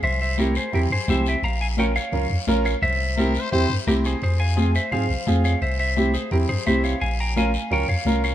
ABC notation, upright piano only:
X:1
M:4/4
L:1/8
Q:1/4=172
K:Cphr
V:1 name="Upright piano"
z2 [C=EG] z [CEG] z [CEG] z | z2 [DFB] z [DFB] z [DFB] z | z2 [C=EG] z [CEG] z [CEG] z | z2 [CFA] z [CFA] z [CFA] z |
z2 [C=EG] z [CEG] z [CEG] z | z2 [DFB] z [DFB] z [DFB] z |]